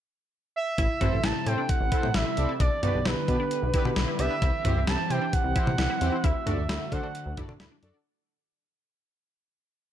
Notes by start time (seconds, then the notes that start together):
0.56 E5
0.78 A1 C3 A3 E4, kick, closed hi-hat
1.01 A1 C4 E4 F#4 A4 C5, closed hi-hat, mid tom
1.12 A1
1.24 A1 E4 A5, snare, closed hi-hat
1.46 A2 C4 E4 A4 C5 G5, closed hi-hat
1.58 D4
1.69 F#5, kick, closed hi-hat
1.81 A1
1.92 C4 E4 A4 C5, kick, closed hi-hat
2.03 A2, mid tom
2.14 A1 E4 E5, snare, closed hi-hat
2.26 E4
2.37 C2 C4 E4 A4 D5, closed hi-hat
2.49 E4
2.60 B1 D3 B3 D4 G4 D5, kick, closed hi-hat
2.83 B1 B3 D4 F#4 G4 B4 D5, closed hi-hat, mid tom
2.94 B1
3.05 B1 E4 B4, snare, closed hi-hat
3.28 B2 B3 D4 G4 B4, kick, closed hi-hat
3.40 D4
3.51 closed hi-hat
3.62 B1
3.74 B3 D4 E4 G4 B4, kick, closed hi-hat
3.85 B2, mid tom
3.96 B1 E4, snare, closed hi-hat
4.08 E4
4.19 C2 B3 D4 G4 B4 E5, closed hi-hat
4.30 E4
4.42 C2 E3 C4 E4, kick, closed hi-hat
4.65 C2 C4 E4 F#4 G4 C5, closed hi-hat, mid tom
4.76 C2
4.87 C2 E4 A5, snare, closed hi-hat
5.10 C3 C4 E4 G4 C5 G5, closed hi-hat
5.21 D4
5.33 F#5, kick, closed hi-hat
5.44 C2
5.56 C4 E4 G4 C5, kick, closed hi-hat
5.67 C3, mid tom
5.78 C2 E4, snare, closed hi-hat
5.90 E4
6.01 E2 C4 E4 G4 C5, closed hi-hat
6.12 E4
6.24 D2 D3 A3 E4 F#4 E5, kick, closed hi-hat
6.46 D2 D4 F#4 A4 D5, closed hi-hat, mid tom
6.58 D2
6.69 D2 E4, snare, closed hi-hat
6.92 D3 D4 F#4 A4 C5 F#5, kick, closed hi-hat
7.03 D4
7.15 closed hi-hat
7.26 D2
7.37 D4 E4 F#4 A4 D5, kick, closed hi-hat, mid tom
7.49 D3, mid tom
7.60 D2 E4, snare, closed hi-hat
7.72 D4
7.83 F#2 D4 F#4 A4 D5, closed hi-hat
7.94 D4